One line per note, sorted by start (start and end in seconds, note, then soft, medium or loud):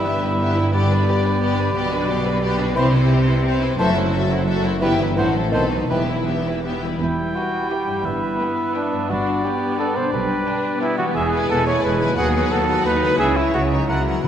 0.00 1.75 G1 medium
0.00 0.73 G2 medium
0.00 1.75 G2 medium
0.00 0.70 G3 medium
0.00 1.83 G3 soft
0.00 0.70 B3 medium
0.00 0.90 B3 soft
0.00 0.73 E4 medium
0.00 0.63 G4 soft
0.00 0.12 B4 soft
0.00 0.69 E5 medium
0.00 0.20 G5 medium
0.00 0.70 B5 medium
0.00 0.29 E6 soft
0.05 0.22 B3 soft
0.05 0.22 G4 soft
0.05 0.55 E5 soft
0.05 0.22 E5 medium
0.13 0.46 B4 medium
0.22 0.40 E4 soft
0.22 0.40 B4 soft
0.22 0.38 G5 soft
0.30 0.75 E6 soft
0.39 0.55 B3 medium
0.39 0.56 G4 soft
0.39 0.56 E5 soft
0.39 1.23 G5 medium
0.48 1.15 B4 soft
0.56 0.73 E4 soft
0.56 0.74 E4 soft
0.56 0.74 B4 soft
0.56 0.75 E5 soft
0.64 0.98 G4 soft
0.73 1.76 G2 medium
0.73 2.72 G3 medium
0.73 0.89 B3 soft
0.73 2.73 B3 medium
0.73 2.72 G4 medium
0.73 0.90 G4 medium
0.73 2.72 D5 medium
0.73 0.89 D5 medium
0.73 2.72 B5 medium
0.82 1.76 D3 soft
0.90 1.92 B3 soft
0.90 1.07 D4 soft
0.90 1.08 B4 soft
0.90 1.08 B4 medium
0.99 1.65 G4 soft
1.07 1.24 B3 soft
1.07 1.24 G4 soft
1.07 1.57 D5 soft
1.07 1.25 D5 medium
1.16 1.48 B4 medium
1.24 1.41 D4 medium
1.24 1.42 B4 medium
1.24 1.40 G5 medium
1.32 2.32 D6 soft
1.41 1.57 B3 medium
1.41 1.57 G4 soft
1.41 1.58 D5 soft
1.41 2.24 G5 medium
1.49 2.16 B4 soft
1.57 1.74 D4 soft
1.57 1.75 B4 soft
1.57 1.76 B4 medium
1.57 2.07 D5 medium
1.66 1.99 G4 soft
1.74 2.74 B1 medium
1.74 2.74 B2 medium
1.74 2.78 B2 medium
1.74 1.90 B3 medium
1.74 1.90 G4 medium
1.74 1.91 D5 medium
1.84 2.83 G3 soft
1.91 2.92 B3 soft
1.91 2.08 D4 medium
1.91 2.09 B4 soft
1.91 2.09 B4 medium
2.00 2.66 G4 soft
2.08 2.26 B3 medium
2.08 2.26 G4 medium
2.08 2.25 D5 medium
2.08 2.57 D5 medium
2.17 2.49 B4 medium
2.25 2.43 D4 medium
2.25 2.42 B4 medium
2.25 2.41 G5 medium
2.34 2.77 D6 medium
2.42 2.58 B3 medium
2.42 2.58 G4 medium
2.42 2.58 D5 medium
2.42 3.26 G5 medium
2.51 3.17 B4 medium
2.58 2.77 D4 medium
2.58 2.76 B4 medium
2.58 2.77 D5 medium
2.67 3.01 G4 medium
2.74 3.78 C2 medium
2.74 3.79 C3 medium
2.74 3.78 C3 medium
2.74 2.87 E3 medium
2.74 2.87 B3 medium
2.74 2.92 C4 medium
2.74 2.87 E4 medium
2.74 2.92 G4 medium
2.74 2.88 C5 medium
2.74 2.92 C5 medium
2.74 2.92 B5 medium
2.84 3.79 G3 medium
2.93 3.79 B3 medium
2.93 3.11 E4 medium
2.93 3.10 B4 medium
2.93 3.10 C5 medium
3.02 3.69 G4 medium
3.09 3.28 C4 medium
3.09 3.27 G4 medium
3.09 3.28 C5 medium
3.09 3.60 E5 medium
3.18 3.51 B4 medium
3.27 3.44 E4 medium
3.27 3.45 B4 medium
3.27 3.44 C5 soft
3.27 3.43 G5 medium
3.35 5.55 E6 medium
3.44 3.60 C4 medium
3.44 3.60 G4 medium
3.44 3.60 C5 medium
3.44 3.80 G5 medium
3.53 3.80 B4 medium
3.61 3.79 E4 medium
3.61 3.78 B4 medium
3.61 3.78 C5 medium
3.61 4.29 E5 medium
3.70 3.80 G4 soft
3.78 4.80 F#1 medium
3.78 4.80 F#2 medium
3.78 4.84 F#2 medium
3.78 3.91 E3 medium
3.78 3.91 A3 medium
3.78 3.90 E4 medium
3.78 3.94 F#4 medium
3.78 3.95 A4 medium
3.78 3.91 C5 medium
3.78 3.95 E5 medium
3.78 3.95 A5 medium
3.88 4.84 F#3 medium
3.95 4.84 A3 medium
3.95 4.13 E4 medium
3.95 4.13 F#4 medium
3.95 4.14 C5 medium
4.05 4.73 E4 medium
4.13 4.30 F#4 medium
4.13 4.30 A4 medium
4.13 4.64 C5 medium
4.13 4.30 E5 medium
4.22 4.55 A4 medium
4.30 4.47 E4 medium
4.30 4.47 F#4 medium
4.30 4.48 C5 medium
4.30 4.47 E5 medium
4.39 4.83 C6 medium
4.47 4.63 F#4 medium
4.47 4.63 A4 medium
4.47 5.55 E5 medium
4.47 4.64 E5 medium
4.56 4.83 A4 medium
4.63 4.82 E4 medium
4.63 4.81 F#4 medium
4.63 4.82 C5 medium
4.63 4.84 C5 medium
4.74 5.07 E4 soft
4.81 5.17 G1 medium
4.81 5.17 G2 medium
4.81 5.19 G2 medium
4.81 4.93 E3 medium
4.81 4.94 G3 medium
4.81 4.98 B3 medium
4.81 4.95 E4 medium
4.81 4.98 G4 medium
4.81 4.94 B4 medium
4.81 4.99 E5 medium
4.81 4.98 G5 medium
4.91 5.19 E3 medium
4.99 5.19 G3 medium
4.99 5.17 E4 medium
4.99 5.18 B4 medium
5.08 5.43 E4 soft
5.16 5.53 A1 medium
5.16 5.53 A2 medium
5.16 5.55 A2 medium
5.16 5.29 E3 medium
5.16 5.30 F#3 medium
5.16 5.34 C4 soft
5.16 5.31 E4 medium
5.16 5.34 F#4 soft
5.16 5.34 A4 medium
5.16 5.30 C5 medium
5.16 5.34 F#5 medium
5.26 5.54 E3 soft
5.34 5.61 F#3 soft
5.34 5.53 E4 medium
5.34 5.53 A4 soft
5.34 5.53 C5 medium
5.44 5.55 E4 soft
5.52 5.90 B1 medium
5.52 5.92 B2 medium
5.52 5.90 B2 medium
5.52 5.65 D#3 medium
5.52 5.67 A3 medium
5.52 5.70 C4 soft
5.52 5.67 D#4 medium
5.52 5.71 A4 soft
5.52 5.70 B4 soft
5.52 5.66 C5 medium
5.52 5.71 A5 medium
5.62 5.92 F#3 soft
5.71 5.92 A3 soft
5.71 5.90 D#4 soft
5.71 5.91 B4 soft
5.71 5.90 C5 soft
5.80 5.91 D#4 soft
5.90 6.82 E1 medium
5.90 6.81 E2 medium
5.90 6.82 E3 medium
5.90 6.03 E3 medium
5.90 6.03 G3 medium
5.90 6.08 B3 soft
5.90 6.03 E4 medium
5.90 6.08 G4 soft
5.90 6.03 B4 medium
5.90 6.08 E5 soft
5.90 6.08 G5 medium
6.00 6.86 G3 soft
6.08 6.27 E4 soft
6.08 6.90 E4 soft
6.08 6.28 E4 soft
6.08 6.27 B4 soft
6.18 6.91 B4 soft
6.27 6.46 B3 soft
6.27 6.82 G4 soft
6.27 6.46 G4 soft
6.27 6.46 E5 soft
6.37 6.72 E5 soft
6.46 6.65 E4 soft
6.46 6.65 B4 soft
6.46 6.62 B5 soft
6.54 10.14 G5 soft
6.64 6.82 B3 soft
6.64 6.82 G4 soft
6.64 6.82 E5 soft
6.64 10.14 B5 soft
6.74 9.11 E5 soft
6.83 7.98 E3 soft
6.83 7.01 E4 soft
6.83 10.14 G4 soft
6.83 7.02 B4 soft
6.87 7.90 G3 soft
6.92 7.95 E4 soft
6.92 6.95 B4 soft
6.96 7.28 E2 medium
6.96 8.00 G3 soft
6.96 9.05 E4 soft
6.96 8.00 B4 soft
7.00 7.29 E1 medium
7.00 8.37 G3 medium
7.00 7.37 E4 medium
7.00 8.07 G5 soft
7.00 9.06 B5 soft
7.36 7.61 E4 soft
7.36 7.69 F#4 medium
7.36 7.61 B4 soft
7.36 7.63 G5 soft
7.70 7.96 E4 soft
7.70 8.04 G4 medium
7.70 7.96 B4 soft
7.70 7.97 G5 soft
7.87 8.91 G2 soft
7.92 8.96 G3 soft
7.96 9.06 E4 soft
8.01 10.12 B3 soft
8.01 9.05 B4 soft
8.05 8.33 G1 medium
8.05 8.33 G2 medium
8.05 8.74 B4 medium
8.05 9.13 E5 soft
8.39 9.10 B3 soft
8.39 8.65 E4 soft
8.39 8.66 B4 soft
8.39 8.67 G5 soft
8.75 9.11 D4 medium
8.75 9.01 E4 soft
8.75 9.01 B4 soft
8.75 9.01 G5 soft
8.93 10.06 G2 soft
8.97 9.99 G3 soft
9.02 10.04 D4 soft
9.06 9.37 G1 medium
9.06 9.44 D4 medium
9.06 9.45 F#4 medium
9.06 10.08 B4 soft
9.10 9.37 G2 medium
9.10 11.11 D4 soft
9.10 11.15 D5 soft
9.10 10.16 B5 soft
9.44 10.12 B3 medium
9.44 9.70 D4 soft
9.44 9.78 G4 medium
9.44 9.70 B4 soft
9.44 9.71 G5 medium
9.79 10.05 D4 soft
9.79 9.97 A4 medium
9.79 10.04 B4 medium
9.79 10.05 G5 soft
9.96 11.07 B2 soft
9.96 10.12 C5 medium
10.00 11.10 G3 soft
10.05 11.12 D4 soft
10.10 10.47 G3 medium
10.10 11.10 B4 soft
10.10 10.79 B4 medium
10.14 10.40 B1 medium
10.14 10.40 B2 medium
10.14 11.13 G3 soft
10.14 11.14 G5 medium
10.47 10.80 D4 medium
10.47 10.73 D4 soft
10.47 10.73 B4 soft
10.47 10.72 G5 medium
10.80 11.80 B3 medium
10.80 11.06 D4 medium
10.80 10.97 E4 medium
10.80 11.06 B4 medium
10.80 11.07 G5 medium
10.98 12.09 E3 soft
10.98 11.05 F#4 medium
11.03 12.12 G#3 soft
11.07 12.14 E4 soft
11.12 11.45 E1 medium
11.12 11.45 E2 medium
11.12 12.15 E4 medium
11.12 11.48 G#4 medium
11.12 12.12 B4 soft
11.12 11.30 G#5 medium
11.16 12.17 G#3 medium
11.16 11.27 E5 medium
11.33 11.65 E4 soft
11.33 11.66 B4 soft
11.33 11.65 G#5 soft
11.50 11.79 E1 medium
11.50 11.79 E2 medium
11.50 11.66 A4 medium
11.66 11.99 E4 soft
11.66 11.99 B4 soft
11.66 11.83 C#5 medium
11.66 11.99 G#5 medium
11.83 12.13 E1 medium
11.83 12.13 E2 medium
11.83 12.17 G#3 medium
11.83 12.16 B4 medium
11.99 13.12 D#3 medium
11.99 12.17 E4 soft
11.99 12.16 B4 medium
11.99 12.16 G#5 soft
12.04 13.14 F#3 soft
12.08 13.16 F#4 soft
12.13 12.83 B3 medium
12.13 13.19 B4 soft
12.17 12.47 D#2 medium
12.17 13.18 F#3 medium
12.17 12.34 F#4 medium
12.17 13.20 F#4 medium
12.17 12.53 G#4 medium
12.17 12.33 B4 soft
12.17 12.32 F#5 medium
12.17 12.33 F#5 medium
12.17 12.29 F#5 medium
12.33 12.68 F#4 medium
12.33 12.67 B4 soft
12.33 12.67 F#5 soft
12.51 12.81 D#2 medium
12.51 12.82 D#2 medium
12.51 12.84 A4 medium
12.68 13.02 F#4 soft
12.68 13.01 B4 soft
12.68 13.01 F#5 soft
12.84 13.15 D#2 medium
12.84 13.19 D#4 medium
12.84 13.17 B4 medium
13.01 13.70 C#3 medium
13.01 13.19 F#4 soft
13.01 13.19 B4 soft
13.01 13.19 F#5 medium
13.06 13.84 G#3 soft
13.11 14.23 E4 soft
13.15 13.53 E4 medium
13.15 13.38 G#4 medium
13.15 14.25 C#5 soft
13.19 13.50 C#2 medium
13.19 13.50 C#3 medium
13.19 13.72 G#3 soft
13.19 13.72 E4 medium
13.19 13.32 E5 medium
13.19 13.35 G#5 medium
13.36 13.71 C#4 soft
13.36 13.53 E4 medium
13.36 13.71 C#5 soft
13.36 13.69 E5 soft
13.53 13.85 C#2 medium
13.53 13.85 C#3 medium
13.53 13.89 G#3 medium
13.53 13.62 F#4 medium
13.70 14.18 C#3 soft
13.70 13.88 C#4 soft
13.70 13.90 D#4 medium
13.70 13.89 C#5 soft
13.70 13.88 E5 soft
13.76 14.11 F#3 soft
13.80 14.15 F#4 soft
13.85 14.20 C#2 soft
13.85 14.21 C#3 soft
13.85 14.24 A#3 soft
13.85 14.23 E4 medium
13.85 14.25 A#4 soft
13.85 14.07 F#5 soft
13.85 14.05 A#5 soft
13.89 14.25 A#3 medium
13.89 14.06 C#4 soft
13.89 14.28 F#4 soft
13.89 14.06 A#4 soft
13.89 14.02 F#5 soft
14.07 14.28 B2 soft
14.07 14.25 C#4 soft
14.07 14.25 A#4 soft
14.07 14.26 F#5 soft
14.12 14.28 F#3 soft
14.16 14.28 F#4 soft
14.21 14.28 B1 soft
14.21 14.28 B2 medium
14.21 14.28 E4 medium
14.21 14.28 B4 soft